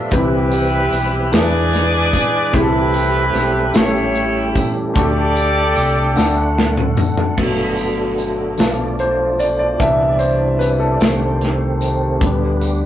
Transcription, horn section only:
0.13 E4 G4 B4
1.34 G#4 B4 D5
2.55 E4 G4 B4
3.76 E4 G4 C#5
4.97 G4 A4 D5

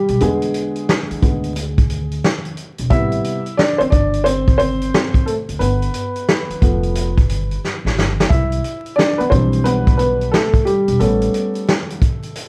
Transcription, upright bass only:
0.09 B1
0.21 E2
1.11 muted upright bass stroke
1.23 D2
2.79 E1
2.91 A1
3.80 muted upright bass stroke
3.92 G1
5.49 D2
5.60 G1
6.50 muted upright bass stroke
6.62 F1
7.29 G1
7.85 A1
7.97 G1
8.31 C2
9.20 muted upright bass stroke
9.32 B1
10.88 E1
11.00 A1

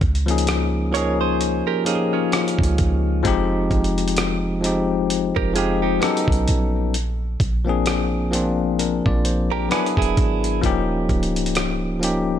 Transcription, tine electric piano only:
0.26 F3 A#3 C#4 D#4
0.31 G#4
0.92 F3 A#3 C#4 D#4
0.97 G#4
1.84 F3 A#3 C#4 D#4
1.89 G4
1.95 G#4
3.23 F3 G#3 C4 D#4
3.27 G4
4.61 F3 G#3 C4 D#4
4.66 G4
5.54 F3 G#3 C4 D#4
5.58 G4
6.00 F#3 B3 C#4 D#4
6.04 A4
7.65 F3 A#3 C4 D4
7.69 G#4
8.31 F3 A#3 C4 D4
8.35 F4
8.79 D4 A#4
9.06 F4 D5
9.25 C5
9.52 D4 A#4
9.69 F#3 B3 D4 E4
9.73 G#4
10.61 F3 A#3 C#4 D#4
10.66 G4
12.00 F3 A#3 C#4 D#4
12.04 G4

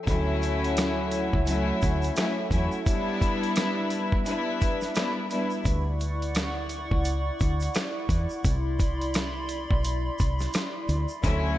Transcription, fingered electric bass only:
0.07 D2
1.33 C#2
1.83 D2
2.51 E2
5.65 D2
6.91 C#2
7.41 D2
8.09 E2
8.45 C2
9.71 B1
10.20 C2
10.89 D2
11.24 D2

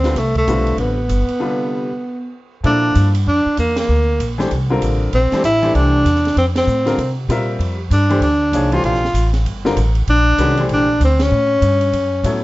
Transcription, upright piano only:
0.04 D3 G3 C4 F4 B4
0.48 D3 G3 C4 F4 B4
1.40 C3 D3 G3 F4 B4
2.63 F3 A#3 E4 A4 D5
4.38 E3 A3 D4 G4 C5
4.70 D3 G3 C4 F4 A#4
5.33 E3 A3 D4 G4 C5
5.62 E3 A3 D4 G4 C5
6.86 D3 G3 C4 F4 A#4
7.29 G3 C4 F4 A#4 E5
8.09 E3 A3 D4 G4 C5
8.53 F3 A#3 D#4 G#4 C#5
8.72 E3 A3 D4 G4 C5
9.65 D3 G3 C4 F4 A#4
10.38 D#3 G#3 C#4 F#4 B4
10.58 E3 A3 D4 G4 C5
12.25 F#3 B3 E4 A4 C#5

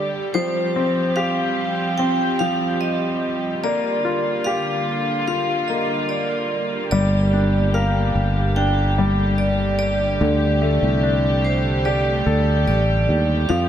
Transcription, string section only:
Already playing: D3 G3 G4
0.34 F3 C4 G4
3.63 D3 A#3 F4
6.92 D3 G3 G4
10.21 G3 A3
13.49 F3 C4

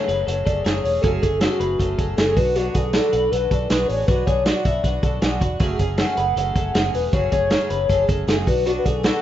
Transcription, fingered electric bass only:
0.08 F#1
0.28 F#1
0.47 F#1
0.66 F#1
0.84 E1
1.04 F#1
1.23 F#1
1.60 F#1
1.79 F#1
1.99 F#1
2.18 F#1
2.37 B1
2.75 B1
3.13 B1
3.32 B1
3.51 B1
3.71 B1
3.89 A1
4.08 B1
4.27 B1
4.65 B1
4.84 B1
5.03 B1
5.22 B1
5.41 E1
5.60 F#1
5.79 F#1
6.18 F#1
6.36 F#1
6.56 F#1
6.75 F#1
6.94 E1
7.13 F#1
7.32 F#1
7.70 F#1
7.89 F#1
8.09 F#1
8.28 F#1
8.47 B1
8.85 B1

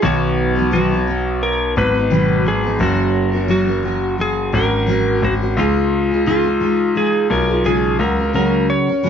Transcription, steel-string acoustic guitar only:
0.02 B2 D#3 F#3 B3 D#4 B4
0.55 F#3 B3 D#4 B4
0.71 B2 D#3 F#3 B3 D#4 B4
0.91 F#3 B3 D#4 B4
1.06 F#3 B3 D#4
1.76 F#3 B3 D#4 B4
1.94 F#3 B3 D#4 B4
2.10 B2 D#3 F#3 B3 D#4 B4
2.44 F#3 B3 D#4 B4
2.64 F#3 B3 D#4 B4
2.79 F#3 C#4 F#4 A#4
3.32 C#4 F#4 A#4
3.48 F#3 C#4 F#4 A#4
3.67 C#4 F#4 A#4
3.83 F#3 C#4 F#4 A#4
4.18 F#3 C#4 F#4 A#4
4.52 F#3 C#4 F#4 A#4
4.87 F#3 C#4 F#4 A#4
5.21 F#3 C#4
5.41 C#4 F#4 A#4
5.57 C#3 G#3 D#4 F4 G#4
6.11 D#4 F4 G#4
6.26 C#3 G#3 D#4 F4 G#4
6.44 D#4 F4 G#4
6.60 G#3 D#4 F4 G#4
6.95 G#3 D#4 F4 G#4
7.30 G#3 D#4 F4 G#4
7.48 D#4 F4 G#4
7.64 C#3 G#3 D#4 F4 G#4
7.99 F#3 C#4 F#4 A#4
8.18 C#4 F#4 A#4
8.33 C#3 F#3 C#4 F#4 A#4
8.87 C#4 F#4 A#4
9.03 C#3 F#3 C#4 F#4 A#4

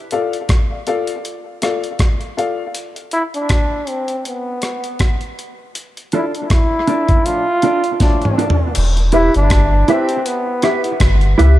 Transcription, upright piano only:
0.12 F4 A4 D5 F5
0.71 D5 F5
0.87 F4 A4 D5 F5
1.62 F4 A4 D5 F5
2.37 F4 A4 D5 F5
9.13 E4 G4 B4 E5
9.72 B4 E5
9.88 E4 G4 B4 E5
10.63 E4 G4 B4 E5
11.38 E4 G4 B4 E5

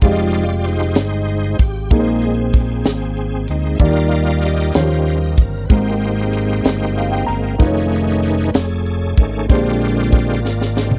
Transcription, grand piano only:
0.02 G#3 F4 G4 D5
0.12 D#5
1.91 A#2 A#3 D#4 G#4 A#4
2.00 C5
3.80 D#3 A#3 D#4 G4 D5
4.75 D#3 F3 C#4 F4 C5
4.81 G3
5.69 G#2 G#3 C4 G4 A#4
6.97 F5
7.11 G5
7.26 A#5
7.58 A3 D#4 F4 B4
7.67 C#5
9.48 A#2 G#3 D4 G4 C5

